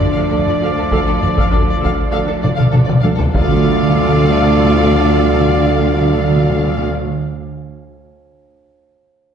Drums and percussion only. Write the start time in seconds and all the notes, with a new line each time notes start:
0.01 taiko low-mid
0.46 taiko low-mid
0.92 taiko
1.23 taiko low-mid
1.38 taiko
1.84 taiko
2.44 taiko mid
2.59 taiko mid
2.73 taiko mid
2.90 taiko mid
3.04 taiko high
3.20 taiko low
3.35 taiko